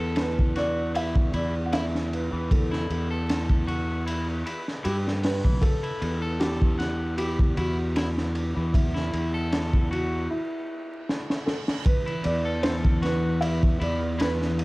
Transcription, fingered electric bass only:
0.00 1.31 E2 medium
1.34 2.29 E2 medium
2.33 2.86 E2 medium
2.90 4.42 E2 medium
4.85 5.41 G2 medium
5.45 5.60 B1 loud
6.02 7.54 E2 medium
7.58 8.52 E2 medium
8.57 9.10 E2 medium
9.13 10.27 E2 medium
12.25 13.77 E2 medium
13.81 14.64 E2 loud

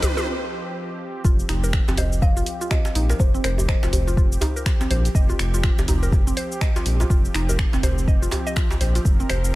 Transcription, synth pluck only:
0.17 0.26 F4 medium
1.25 1.38 F4 medium
1.49 1.57 D#4 medium
1.64 1.72 A#4 medium
1.88 1.97 C4 medium
1.98 2.11 C5 loud
2.22 2.35 D#5 medium
2.37 2.46 F4 medium
2.61 2.70 F4 medium
2.71 2.84 F4 medium
2.95 3.03 D#4 medium
3.10 3.19 A#4 medium
3.34 3.44 C4 medium
3.44 3.57 C5 loud
3.69 3.82 D#5 medium
3.83 3.92 F4 medium
4.08 4.16 F4 medium
4.17 4.30 F4 medium
4.42 4.50 D#4 medium
4.56 4.65 A#4 medium
4.81 4.90 C4 medium
4.91 5.04 C5 loud
5.15 5.28 D#5 medium
5.29 5.39 F4 medium
5.54 5.63 F4 medium
5.64 5.77 F4 medium
5.88 5.96 D#4 medium
6.03 6.12 A#4 medium
6.27 6.36 C4 medium
6.37 6.50 C5 loud
6.61 6.74 D#5 medium
6.76 6.85 F4 medium
7.00 7.09 F4 medium
7.10 7.23 F4 medium
7.35 7.42 D#4 medium
7.49 7.58 A#4 medium
7.73 7.83 C4 medium
7.83 7.96 C5 loud
8.08 8.21 D#5 medium
8.22 8.32 F4 medium
8.47 8.55 D#5 loud
8.56 8.69 F4 medium
8.81 8.95 C5 medium
8.96 9.04 F4 medium
9.20 9.29 C4 medium
9.30 9.43 C5 loud

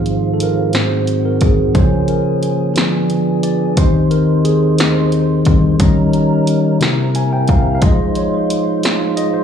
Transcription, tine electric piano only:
0.00 0.70 G#2 soft
0.00 0.70 F3 soft
0.00 0.70 C4 medium
0.34 0.41 A4 medium
0.43 0.76 A#4 medium
0.73 1.71 G#2 soft
0.73 1.71 F#3 soft
0.73 1.71 C4 soft
0.73 1.27 C5 medium
1.25 1.42 A#4 medium
1.43 1.73 G#4 medium
1.75 2.72 C#3 soft
1.75 2.73 F3 soft
1.75 2.73 A#3 medium
1.75 2.10 C5 medium
2.09 2.24 A#4 medium
2.76 3.73 D3 soft
2.76 3.73 F3 soft
2.76 3.74 B3 soft
3.43 3.78 D5 medium
3.77 4.74 D#3 soft
3.77 4.75 C4 medium
3.77 4.75 G4 soft
3.77 4.12 C5 medium
4.11 4.26 A#4 medium
4.45 5.42 G#4 medium
5.46 5.76 D#3 soft
5.46 5.76 G3 soft
5.46 5.77 C4 soft
5.79 6.77 D#3 soft
5.79 6.77 G3 soft
5.79 6.77 C#4 medium
6.80 7.78 C3 soft
6.80 7.78 A#3 soft
6.80 7.78 E4 medium
7.16 7.33 G#5 medium
7.33 7.48 G5 medium
7.49 7.74 F5 medium
7.75 7.82 F5 medium
7.81 8.79 F3 soft
7.81 8.79 G#3 soft
7.81 8.79 D#4 medium
7.81 8.14 D#5 medium
8.17 8.34 C#5 medium
8.34 8.65 C5 medium
9.17 9.34 D#5 medium
9.34 9.44 C5 medium

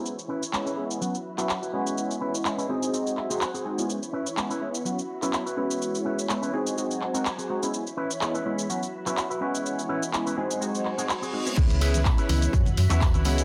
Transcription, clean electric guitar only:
0.29 0.42 C#4 loud
0.29 0.42 E4 medium
0.29 0.42 B4 loud
0.53 muted clean electric guitar stroke soft
0.66 0.83 C#4 medium
0.66 0.84 E4 medium
0.66 0.84 B4 medium
1.01 muted clean electric guitar stroke soft
1.38 1.49 E4 medium
1.38 1.49 F#4 loud
1.38 1.49 B4 loud
1.62 1.72 E4 medium
1.62 1.73 F#4 medium
1.62 1.72 B4 medium
1.73 2.12 C#4 medium
1.73 2.12 E4 medium
1.73 2.13 B4 medium
2.21 2.34 C#4 loud
2.21 2.34 E4 medium
2.21 2.34 B4 loud
2.45 muted clean electric guitar stroke soft
2.57 2.69 C#4 medium
2.57 2.69 E4 medium
2.57 2.69 B4 medium
2.69 3.17 C4 medium
2.69 3.17 F#4 medium
2.69 3.17 G#4 medium
2.69 2.91 C5 medium
2.93 3.16 D#5 medium
3.17 3.40 E5 medium
3.30 3.41 C4 loud
3.30 3.41 F#4 medium
3.30 3.41 G#4 loud
3.41 3.64 F#5 medium
3.54 3.84 C4 medium
3.54 3.84 F#4 medium
3.54 3.84 G#4 medium
3.65 3.88 G#5 medium
4.13 4.26 C#4 loud
4.13 4.26 E4 medium
4.13 4.26 B4 loud
4.37 muted clean electric guitar stroke soft
4.50 4.67 C#4 medium
4.50 4.68 E4 medium
4.50 4.68 B4 medium
4.85 muted clean electric guitar stroke soft
5.22 5.33 E4 loud
5.22 5.33 F#4 loud
5.22 5.33 B4 medium
5.46 5.56 E4 medium
5.46 5.57 F#4 medium
5.46 5.56 B4 medium
5.57 5.96 C#4 medium
5.57 5.96 E4 medium
5.57 5.97 B4 medium
6.05 6.18 C#4 loud
6.05 6.18 E4 medium
6.05 6.18 B4 loud
6.29 muted clean electric guitar stroke soft
6.42 6.52 C#4 medium
6.42 6.53 E4 medium
6.42 6.53 B4 medium
6.53 7.01 C4 medium
6.53 7.01 F#4 medium
6.53 7.01 G#4 medium
7.14 7.25 C4 loud
7.14 7.25 F#4 medium
7.14 7.25 A#4 medium
7.38 7.68 C4 medium
7.38 7.68 F#4 medium
7.38 7.68 G#4 medium
7.97 8.10 C#4 loud
7.97 8.10 E4 medium
7.97 8.10 B4 loud
8.21 muted clean electric guitar stroke soft
8.34 8.52 C#4 medium
8.34 8.52 E4 medium
8.34 8.52 B4 medium
8.69 muted clean electric guitar stroke soft
9.06 9.17 E4 medium
9.06 9.17 F#4 medium
9.06 9.17 B4 loud
9.30 9.40 E4 medium
9.30 9.41 F#4 medium
9.30 9.40 B4 medium
9.41 9.80 C#4 medium
9.41 9.80 E4 medium
9.41 9.81 B4 loud
9.89 10.02 C#4 loud
9.89 10.02 E4 medium
9.89 10.02 B4 loud
10.13 muted clean electric guitar stroke soft
10.26 10.36 C#4 medium
10.26 10.37 E4 medium
10.26 10.37 B4 medium
10.37 10.85 C4 medium
10.37 10.85 F#4 medium
10.37 10.85 G#4 medium
10.98 11.09 C4 loud
10.98 11.09 F#4 medium
10.98 11.09 G#4 loud
11.22 11.51 C4 medium
11.22 11.52 F#4 medium
11.22 11.52 G#4 medium
11.81 12.00 C#4 loud
11.81 12.00 E4 medium
11.81 12.00 G#4 loud
11.81 12.00 B4 loud
12.17 12.53 C#4 medium
12.17 12.53 E4 medium
12.17 12.53 G#4 medium
12.17 12.53 B4 medium
12.90 13.01 C#4 loud
12.90 13.01 E4 medium
12.90 13.01 F#4 loud
12.90 13.01 B4 loud
13.13 13.24 C#4 medium
13.13 13.24 E4 medium
13.13 13.25 F#4 medium
13.13 13.24 B4 medium
13.25 13.44 C#4 medium
13.25 13.44 E4 medium
13.25 13.44 G#4 medium
13.25 13.44 B4 medium

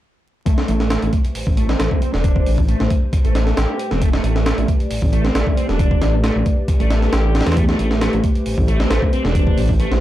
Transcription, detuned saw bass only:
0.69 0.97 A1 loud
1.03 1.10 A1 medium
1.35 1.45 A1 soft
1.47 1.75 A1 medium
1.80 1.88 A1 medium
2.14 2.42 E1 loud
2.46 2.75 A1 loud
2.80 2.88 A1 medium
3.25 3.53 A1 medium
3.57 3.66 A1 loud
3.91 4.20 E1 loud
4.24 4.53 A1 loud
4.58 4.66 A1 medium
4.91 5.00 A1 soft
5.02 5.31 A1 medium
5.35 5.44 A1 medium
5.69 5.97 E1 medium
6.02 6.31 A1 loud
6.36 6.43 A1 medium
6.80 7.08 A1 medium
7.13 7.42 A1 loud
7.47 7.75 E2 medium
7.80 8.08 A1 loud
8.13 8.21 A1 medium
8.46 8.56 A1 soft
8.58 8.86 A1 medium
8.90 8.99 A1 medium
9.25 9.53 E1 medium
9.57 9.86 A1 loud
9.91 9.99 A1 medium

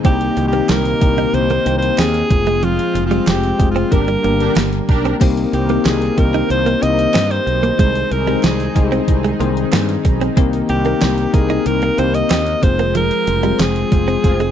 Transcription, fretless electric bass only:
0.05 0.28 C2 loud
0.37 0.60 C2 medium
0.69 0.92 C2 loud
1.02 1.25 C2 loud
1.33 1.57 C2 loud
1.66 1.89 C2 loud
1.98 2.22 D#2 medium
2.31 2.77 F1 loud
2.95 3.18 F1 medium
3.27 3.50 F1 loud
3.60 3.83 F1 medium
3.92 4.15 G1 loud
4.24 4.47 G1 medium
4.56 4.79 G1 medium
4.89 5.12 B1 medium
5.21 5.44 C2 loud
5.53 5.76 C2 loud
5.85 6.09 C2 loud
6.18 6.41 C2 medium
6.50 6.73 C2 loud
6.83 7.06 C2 loud
7.15 7.38 G2 medium
7.47 7.70 B1 medium
7.79 8.02 C2 loud
8.11 8.34 C2 loud
8.44 8.67 C2 loud
8.76 8.99 C2 loud
9.08 9.31 C2 loud
9.40 9.63 C2 loud
9.73 9.96 G2 medium
10.05 10.28 B1 medium
10.37 10.60 C2 loud
10.69 10.93 C2 loud
11.02 11.25 C2 loud
11.34 11.57 C2 loud
11.66 11.89 C2 loud
11.98 12.21 C2 loud
12.30 12.54 D#2 medium
12.63 13.09 F1 loud
13.27 13.51 F1 loud
13.59 13.83 F1 loud
13.92 14.15 F1 loud
14.24 14.47 F1 loud

